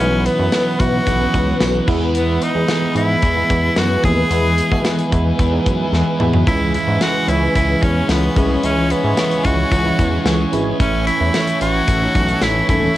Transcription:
Already playing: ambient pad E3 B4 F#5 B5, tine electric piano C#4 D#4
0.00 analog synth bass B1, distorted electric guitar B2 F#3 B3, tine electric piano E3 F#3 B3 E4, tenor saxophone C#4
0.26 tenor saxophone B3, closed hi-hat
0.38 analog synth bass F#2, tine electric piano E3 F#3 B3 E4
0.52 distorted electric guitar B2 F#3 B3, snare, closed hi-hat, tambourine
0.80 analog synth bass B1, tine electric piano E3 F#3 B3 E4, tenor saxophone F#4, kick, closed hi-hat
1.06 analog synth bass B1, distorted electric guitar B2 F#3 B3, kick, closed hi-hat
1.19 tine electric piano E3 F#3 B3 C#4
1.34 analog synth bass C#2, kick, closed hi-hat
1.60 analog synth bass B1, analog polysynth B3 F#4, snare, closed hi-hat, tambourine
1.87 analog synth bass E2, tine electric piano E3 G#3 B3 E4, analog polysynth E3 B3 G#4, distorted electric guitar E3 B3 E4, ambient pad G#5, kick, crash
2.15 tenor saxophone B3, closed hi-hat
2.42 tenor saxophone D#4, closed hi-hat
2.55 analog synth bass E2, tine electric piano E3 G#3 B3 G#4
2.68 distorted electric guitar E3 B3 E4, snare, closed hi-hat, tambourine
2.95 analog synth bass G#2, tine electric piano E3 G#3 B3 E4, tenor saxophone E4, closed hi-hat
3.22 analog synth bass E2, distorted electric guitar E3 B3 E4, kick, closed hi-hat
3.36 tine electric piano E3 G#3 B3 E4
3.50 analog synth bass E2, kick, closed hi-hat
3.76 analog synth bass F#2, analog polysynth E3 B3 G#4, tenor saxophone F#4, snare, closed hi-hat, tambourine
4.03 analog synth bass D#2, tine electric piano E3 G#3 B3 E4, analog polysynth E3 B3 G#4, distorted electric guitar B3 E4, tenor saxophone G#4, kick, closed hi-hat
4.30 analog synth bass E2, distorted electric guitar E3 B3, tine electric piano E3 G#3 B3 E4, closed hi-hat
4.34 distorted electric guitar E4
4.58 closed hi-hat
4.71 analog synth bass B2, tine electric piano E3 G#3 B3 E4, kick
4.85 snare, closed hi-hat, tambourine
4.99 closed hi-hat
5.11 analog synth bass E2, tine electric piano E3 G#3 B3 E4, kick, closed hi-hat
5.38 analog synth bass E2, distorted electric guitar E3 B3 E4, kick, closed hi-hat
5.51 tine electric piano E3 G#3 B3 D#4
5.66 analog synth bass F#2, kick, closed hi-hat
5.92 analog synth bass E2, analog polysynth E3 B3 G#4, tine electric piano G#5, snare
6.19 analog synth bass E2, tine electric piano E3 G#3 B3 E4 E5, analog polysynth E3 B3 G#4, distorted electric guitar B3 E4, mid tom
6.33 analog synth bass F#2, floor tom
6.46 analog synth bass C#2, distorted electric guitar C#3 G#3, tine electric piano E3 G#3 C#4 E4, tenor saxophone E4, ambient pad C#5 C#6, kick, closed hi-hat
6.50 distorted electric guitar C#4
6.74 tenor saxophone E4, closed hi-hat
6.87 analog synth bass G#2, tine electric piano E3 G#3 C#4 E4
7.01 tenor saxophone F#4, snare, closed hi-hat, tambourine
7.28 analog synth bass C#2, tine electric piano E3 G#3 C#4 E4, tenor saxophone E4, closed hi-hat
7.54 analog synth bass C#2, distorted electric guitar C#3 G#3 C#4, tenor saxophone E4, kick, closed hi-hat
7.68 tine electric piano E3 G#3 C#4 E4
7.83 analog synth bass E2, tenor saxophone C#4, kick, closed hi-hat
8.09 analog synth bass C#2, analog polysynth E3 C#4 G#4, tenor saxophone B3, snare, closed hi-hat, tambourine
8.35 analog synth bass C2, tine electric piano E3 G#3 C#4 E4, analog polysynth E3 C#4 G#4, distorted electric guitar G#3 C#4, tenor saxophone B3, kick, closed hi-hat
8.63 analog synth bass C#2, distorted electric guitar C#3 G#3 C#4, tine electric piano E3 G#3 C#4 E4, tenor saxophone C#4, closed hi-hat
8.90 tenor saxophone B3, closed hi-hat
9.03 analog synth bass G#2, tine electric piano E3 G#3 C#4 E4
9.17 distorted electric guitar C#3 G#3 C#4, snare, closed hi-hat, tambourine
9.31 closed hi-hat
9.44 analog synth bass C#2, tine electric piano E3 G#3 C#4 E4, tenor saxophone F#4, kick, closed hi-hat
9.70 analog synth bass C#2, distorted electric guitar C#3 G#3, kick, closed hi-hat
9.75 distorted electric guitar C#4
9.84 tine electric piano E3 G#3 C#4 E4
9.99 analog synth bass E2, kick, closed hi-hat
10.25 analog synth bass C#2, analog polysynth E3 C#4 G#4, snare, closed hi-hat, tambourine
10.52 analog synth bass G#1, tine electric piano E3 G#3 C#4 E4, analog polysynth E3 C#4 G#4, closed hi-hat
10.79 analog synth bass A1, distorted electric guitar A2 E3 A3, tine electric piano E3 A3 C#4 E4, ambient pad E3 A5, tenor saxophone C#4, kick, closed hi-hat
11.07 tenor saxophone E4, closed hi-hat
11.20 analog synth bass E2, tine electric piano E3 A3 C#4 E4
11.33 distorted electric guitar A2 E3 A3, snare, closed hi-hat, tambourine
11.47 closed hi-hat
11.61 analog synth bass A1, tine electric piano E3 A3 C#4 E4, tenor saxophone F#4, closed hi-hat
11.87 analog synth bass A1, distorted electric guitar A2 E3 A3, kick, closed hi-hat
12.01 tine electric piano E3 A3 C#4 D#4
12.15 analog synth bass B1, kick, closed hi-hat
12.29 closed hi-hat
12.42 analog synth bass A1, analog polysynth E3 C#4 A4, tenor saxophone E4, snare, closed hi-hat, tambourine
12.68 analog synth bass D#1, tine electric piano E3 A3 C#4 E4, analog polysynth E3 C#4 A4, distorted electric guitar E3 A3, tenor saxophone E4, kick, closed hi-hat

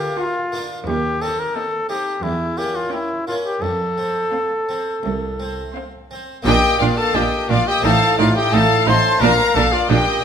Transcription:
Already playing: harpsichord A#3 D4 F4, trumpet G4
0.19 viola section F4, trumpet F4, violin section F5 A#5
0.52 harpsichord A#3 D4 F4
0.87 harpsichord D#2, cello section D#2, trumpet G4
1.22 harpsichord C4 D#4, trumpet A4
1.39 trumpet A#4
1.55 viola section C4, trumpet A4, violin section D#5 G5
1.89 harpsichord C4 D#4, trumpet G4
2.23 cello section E2, harpsichord E2, trumpet E4
2.57 harpsichord A#3 C#4, trumpet G4
2.76 trumpet F4
2.92 viola section C#4, trumpet E4, violin section G5 A#5
3.27 harpsichord A#3 C#4, trumpet F4
3.46 trumpet G4
3.62 cello section F2, harpsichord F2, trumpet A4
3.98 harpsichord C4
4.33 viola section C4, violin section F5 C6
4.69 harpsichord C4
5.03 harpsichord C2, cello section C2
5.40 harpsichord C4
5.75 viola section C4, violin section F5 C6
6.11 harpsichord C4
6.42 double bass section A#1, cello section A#2, harpsichord A#2 A#3 D4, viola section D4, trumpet G4, violin section D#5 G5
6.79 double bass section A#1, harpsichord A#2, cello section A#2, viola section D4, trumpet F4, violin section D5 F5
6.98 trumpet A4, violin section F5 A5
7.15 double bass section A#1, harpsichord A#2, cello section A#2, viola section D4, trumpet G4, violin section D#5 G5
7.49 double bass section A#1, harpsichord A#2, cello section A#2, viola section D4, trumpet F4, violin section D5 F5
7.67 trumpet G4, violin section D#5 G5
7.80 harpsichord A2 C4 D#4, cello section A2, viola section D#4, trumpet A4
7.84 double bass section A1, violin section F5 A5
8.18 double bass section A1, harpsichord A2, cello section A2, viola section D#4, trumpet F4, violin section D5 F5
8.36 trumpet G4, violin section D#5 G5
8.53 double bass section A1, harpsichord A2, cello section A2, viola section D#4, trumpet A4, violin section F5 A5
8.86 double bass section A1, harpsichord A2, cello section A2, viola section D#4, trumpet C5, violin section A5 C6
9.18 double bass section A#1, harpsichord A#2 A#3 D4, viola section D4, trumpet A#4, violin section F5
9.22 cello section A#2, violin section A#5
9.55 double bass section A#1, cello section A#2, harpsichord A#2, viola section D4, trumpet A4, violin section F5 A5
9.72 trumpet F4, violin section D5 F5
9.89 double bass section A#1, cello section A#2, harpsichord A#2, viola section D4, trumpet G4, violin section D#5 G5

